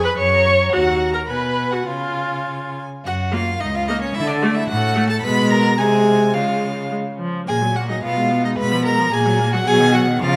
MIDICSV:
0, 0, Header, 1, 5, 480
1, 0, Start_track
1, 0, Key_signature, 6, "major"
1, 0, Tempo, 553506
1, 635, Time_signature, 2, 2, 24, 8
1, 1122, Tempo, 588235
1, 2562, Tempo, 544959
1, 4962, Tempo, 561798
1, 6882, Tempo, 547945
1, 8924, End_track
2, 0, Start_track
2, 0, Title_t, "Violin"
2, 0, Program_c, 0, 40
2, 60, Note_on_c, 0, 83, 61
2, 167, Note_off_c, 0, 83, 0
2, 174, Note_on_c, 0, 85, 64
2, 295, Note_on_c, 0, 82, 60
2, 308, Note_off_c, 0, 85, 0
2, 410, Note_on_c, 0, 85, 61
2, 423, Note_off_c, 0, 82, 0
2, 534, Note_on_c, 0, 82, 53
2, 547, Note_off_c, 0, 85, 0
2, 635, Note_off_c, 0, 82, 0
2, 641, Note_on_c, 0, 82, 73
2, 1125, Note_on_c, 0, 80, 61
2, 1138, Note_off_c, 0, 82, 0
2, 1599, Note_off_c, 0, 80, 0
2, 1604, Note_on_c, 0, 80, 61
2, 2381, Note_off_c, 0, 80, 0
2, 2568, Note_on_c, 0, 78, 95
2, 2638, Note_off_c, 0, 78, 0
2, 2808, Note_on_c, 0, 77, 94
2, 3041, Note_on_c, 0, 75, 96
2, 3055, Note_off_c, 0, 77, 0
2, 3169, Note_on_c, 0, 77, 91
2, 3182, Note_off_c, 0, 75, 0
2, 3274, Note_off_c, 0, 77, 0
2, 3279, Note_on_c, 0, 75, 98
2, 3398, Note_off_c, 0, 75, 0
2, 3403, Note_on_c, 0, 73, 88
2, 3517, Note_on_c, 0, 76, 116
2, 3530, Note_off_c, 0, 73, 0
2, 3632, Note_on_c, 0, 74, 86
2, 3645, Note_off_c, 0, 76, 0
2, 3872, Note_on_c, 0, 76, 98
2, 3885, Note_off_c, 0, 74, 0
2, 3985, Note_off_c, 0, 76, 0
2, 3990, Note_on_c, 0, 78, 115
2, 4347, Note_off_c, 0, 78, 0
2, 4354, Note_on_c, 0, 81, 97
2, 4455, Note_off_c, 0, 81, 0
2, 4460, Note_on_c, 0, 83, 125
2, 4712, Note_on_c, 0, 82, 115
2, 4725, Note_off_c, 0, 83, 0
2, 4956, Note_on_c, 0, 80, 110
2, 4969, Note_off_c, 0, 82, 0
2, 5432, Note_on_c, 0, 77, 101
2, 5445, Note_off_c, 0, 80, 0
2, 5918, Note_off_c, 0, 77, 0
2, 6407, Note_on_c, 0, 80, 105
2, 6648, Note_on_c, 0, 78, 88
2, 6661, Note_off_c, 0, 80, 0
2, 6755, Note_off_c, 0, 78, 0
2, 6760, Note_on_c, 0, 75, 79
2, 6877, Note_off_c, 0, 75, 0
2, 6882, Note_on_c, 0, 77, 97
2, 7238, Note_off_c, 0, 77, 0
2, 7248, Note_on_c, 0, 75, 80
2, 7296, Note_off_c, 0, 75, 0
2, 7376, Note_on_c, 0, 83, 116
2, 7594, Note_off_c, 0, 83, 0
2, 7599, Note_on_c, 0, 82, 112
2, 7848, Note_on_c, 0, 80, 110
2, 7861, Note_off_c, 0, 82, 0
2, 8202, Note_off_c, 0, 80, 0
2, 8214, Note_on_c, 0, 78, 111
2, 8320, Note_on_c, 0, 80, 127
2, 8333, Note_off_c, 0, 78, 0
2, 8565, Note_on_c, 0, 78, 108
2, 8578, Note_off_c, 0, 80, 0
2, 8793, Note_off_c, 0, 78, 0
2, 8798, Note_on_c, 0, 77, 125
2, 8924, Note_off_c, 0, 77, 0
2, 8924, End_track
3, 0, Start_track
3, 0, Title_t, "Violin"
3, 0, Program_c, 1, 40
3, 32, Note_on_c, 1, 83, 83
3, 146, Note_off_c, 1, 83, 0
3, 151, Note_on_c, 1, 85, 93
3, 617, Note_off_c, 1, 85, 0
3, 622, Note_on_c, 1, 78, 90
3, 978, Note_off_c, 1, 78, 0
3, 983, Note_on_c, 1, 82, 68
3, 1036, Note_off_c, 1, 82, 0
3, 1099, Note_on_c, 1, 83, 79
3, 1462, Note_on_c, 1, 78, 66
3, 1474, Note_off_c, 1, 83, 0
3, 1590, Note_on_c, 1, 77, 67
3, 1602, Note_off_c, 1, 78, 0
3, 2325, Note_off_c, 1, 77, 0
3, 2555, Note_on_c, 1, 66, 85
3, 2801, Note_on_c, 1, 65, 78
3, 2814, Note_off_c, 1, 66, 0
3, 3040, Note_on_c, 1, 63, 88
3, 3053, Note_off_c, 1, 65, 0
3, 3152, Note_off_c, 1, 63, 0
3, 3158, Note_on_c, 1, 65, 78
3, 3287, Note_on_c, 1, 63, 87
3, 3300, Note_off_c, 1, 65, 0
3, 3401, Note_off_c, 1, 63, 0
3, 3407, Note_on_c, 1, 61, 85
3, 3523, Note_on_c, 1, 64, 104
3, 3536, Note_off_c, 1, 61, 0
3, 3633, Note_off_c, 1, 64, 0
3, 3638, Note_on_c, 1, 62, 77
3, 3709, Note_off_c, 1, 62, 0
3, 3885, Note_on_c, 1, 64, 83
3, 3991, Note_on_c, 1, 66, 98
3, 4004, Note_off_c, 1, 64, 0
3, 4351, Note_on_c, 1, 69, 98
3, 4364, Note_off_c, 1, 66, 0
3, 4481, Note_on_c, 1, 71, 110
3, 4494, Note_off_c, 1, 69, 0
3, 4714, Note_off_c, 1, 71, 0
3, 4720, Note_on_c, 1, 70, 105
3, 4951, Note_off_c, 1, 70, 0
3, 4956, Note_on_c, 1, 68, 97
3, 5424, Note_off_c, 1, 68, 0
3, 5429, Note_on_c, 1, 65, 79
3, 5907, Note_off_c, 1, 65, 0
3, 6412, Note_on_c, 1, 68, 96
3, 6480, Note_off_c, 1, 68, 0
3, 6653, Note_on_c, 1, 66, 71
3, 6762, Note_off_c, 1, 66, 0
3, 6767, Note_on_c, 1, 63, 71
3, 6814, Note_off_c, 1, 63, 0
3, 6871, Note_on_c, 1, 65, 83
3, 7238, Note_on_c, 1, 63, 85
3, 7251, Note_off_c, 1, 65, 0
3, 7347, Note_on_c, 1, 71, 102
3, 7360, Note_off_c, 1, 63, 0
3, 7582, Note_off_c, 1, 71, 0
3, 7588, Note_on_c, 1, 70, 90
3, 7833, Note_on_c, 1, 68, 100
3, 7846, Note_off_c, 1, 70, 0
3, 8184, Note_off_c, 1, 68, 0
3, 8189, Note_on_c, 1, 66, 100
3, 8239, Note_off_c, 1, 66, 0
3, 8306, Note_on_c, 1, 68, 121
3, 8542, Note_off_c, 1, 68, 0
3, 8547, Note_on_c, 1, 66, 87
3, 8617, Note_off_c, 1, 66, 0
3, 8792, Note_on_c, 1, 65, 102
3, 8924, Note_off_c, 1, 65, 0
3, 8924, End_track
4, 0, Start_track
4, 0, Title_t, "Viola"
4, 0, Program_c, 2, 41
4, 42, Note_on_c, 2, 71, 93
4, 89, Note_off_c, 2, 71, 0
4, 154, Note_on_c, 2, 73, 116
4, 630, Note_on_c, 2, 66, 99
4, 643, Note_off_c, 2, 73, 0
4, 988, Note_off_c, 2, 66, 0
4, 994, Note_on_c, 2, 70, 81
4, 1044, Note_off_c, 2, 70, 0
4, 1115, Note_on_c, 2, 71, 89
4, 1477, Note_on_c, 2, 66, 74
4, 1489, Note_off_c, 2, 71, 0
4, 1583, Note_off_c, 2, 66, 0
4, 1588, Note_on_c, 2, 65, 79
4, 2309, Note_off_c, 2, 65, 0
4, 2791, Note_on_c, 2, 58, 73
4, 2912, Note_off_c, 2, 58, 0
4, 3296, Note_on_c, 2, 58, 76
4, 3406, Note_off_c, 2, 58, 0
4, 3766, Note_on_c, 2, 57, 91
4, 3878, Note_off_c, 2, 57, 0
4, 4236, Note_on_c, 2, 57, 89
4, 4350, Note_off_c, 2, 57, 0
4, 4480, Note_on_c, 2, 56, 91
4, 4928, Note_off_c, 2, 56, 0
4, 4962, Note_on_c, 2, 56, 81
4, 5431, Note_off_c, 2, 56, 0
4, 5444, Note_on_c, 2, 56, 72
4, 5867, Note_off_c, 2, 56, 0
4, 5929, Note_on_c, 2, 56, 79
4, 5997, Note_off_c, 2, 56, 0
4, 6161, Note_on_c, 2, 53, 78
4, 6399, Note_off_c, 2, 53, 0
4, 6409, Note_on_c, 2, 58, 71
4, 6532, Note_on_c, 2, 54, 62
4, 6545, Note_off_c, 2, 58, 0
4, 6648, Note_on_c, 2, 58, 66
4, 6661, Note_off_c, 2, 54, 0
4, 6765, Note_on_c, 2, 54, 61
4, 6777, Note_off_c, 2, 58, 0
4, 6880, Note_off_c, 2, 54, 0
4, 6885, Note_on_c, 2, 59, 65
4, 7005, Note_on_c, 2, 56, 63
4, 7018, Note_off_c, 2, 59, 0
4, 7121, Note_on_c, 2, 59, 64
4, 7134, Note_off_c, 2, 56, 0
4, 7242, Note_on_c, 2, 56, 66
4, 7255, Note_off_c, 2, 59, 0
4, 7352, Note_off_c, 2, 56, 0
4, 7357, Note_on_c, 2, 56, 74
4, 7488, Note_on_c, 2, 53, 65
4, 7501, Note_off_c, 2, 56, 0
4, 7601, Note_on_c, 2, 56, 70
4, 7614, Note_off_c, 2, 53, 0
4, 7730, Note_on_c, 2, 53, 66
4, 7743, Note_off_c, 2, 56, 0
4, 7836, Note_off_c, 2, 53, 0
4, 7841, Note_on_c, 2, 58, 73
4, 7959, Note_on_c, 2, 54, 75
4, 7972, Note_off_c, 2, 58, 0
4, 8077, Note_on_c, 2, 58, 77
4, 8090, Note_off_c, 2, 54, 0
4, 8201, Note_on_c, 2, 54, 76
4, 8214, Note_off_c, 2, 58, 0
4, 8314, Note_off_c, 2, 54, 0
4, 8319, Note_on_c, 2, 54, 92
4, 8435, Note_on_c, 2, 51, 78
4, 8448, Note_off_c, 2, 54, 0
4, 8558, Note_on_c, 2, 54, 80
4, 8571, Note_off_c, 2, 51, 0
4, 8667, Note_on_c, 2, 51, 79
4, 8680, Note_off_c, 2, 54, 0
4, 8794, Note_off_c, 2, 51, 0
4, 8803, Note_on_c, 2, 53, 78
4, 8924, Note_off_c, 2, 53, 0
4, 8924, End_track
5, 0, Start_track
5, 0, Title_t, "Cello"
5, 0, Program_c, 3, 42
5, 0, Note_on_c, 3, 41, 89
5, 99, Note_off_c, 3, 41, 0
5, 152, Note_on_c, 3, 42, 84
5, 575, Note_off_c, 3, 42, 0
5, 633, Note_on_c, 3, 39, 76
5, 1087, Note_off_c, 3, 39, 0
5, 1121, Note_on_c, 3, 47, 67
5, 1590, Note_off_c, 3, 47, 0
5, 1596, Note_on_c, 3, 49, 58
5, 2377, Note_off_c, 3, 49, 0
5, 2562, Note_on_c, 3, 42, 77
5, 2969, Note_off_c, 3, 42, 0
5, 3050, Note_on_c, 3, 37, 79
5, 3451, Note_off_c, 3, 37, 0
5, 3528, Note_on_c, 3, 50, 93
5, 3926, Note_off_c, 3, 50, 0
5, 4007, Note_on_c, 3, 45, 93
5, 4402, Note_off_c, 3, 45, 0
5, 4477, Note_on_c, 3, 47, 90
5, 4968, Note_on_c, 3, 48, 83
5, 4981, Note_off_c, 3, 47, 0
5, 5445, Note_on_c, 3, 49, 74
5, 5458, Note_off_c, 3, 48, 0
5, 6233, Note_off_c, 3, 49, 0
5, 6411, Note_on_c, 3, 46, 81
5, 6830, Note_off_c, 3, 46, 0
5, 6884, Note_on_c, 3, 47, 82
5, 7310, Note_off_c, 3, 47, 0
5, 7369, Note_on_c, 3, 47, 84
5, 7789, Note_off_c, 3, 47, 0
5, 7842, Note_on_c, 3, 46, 92
5, 8262, Note_off_c, 3, 46, 0
5, 8315, Note_on_c, 3, 47, 109
5, 8740, Note_off_c, 3, 47, 0
5, 8798, Note_on_c, 3, 49, 104
5, 8924, Note_off_c, 3, 49, 0
5, 8924, End_track
0, 0, End_of_file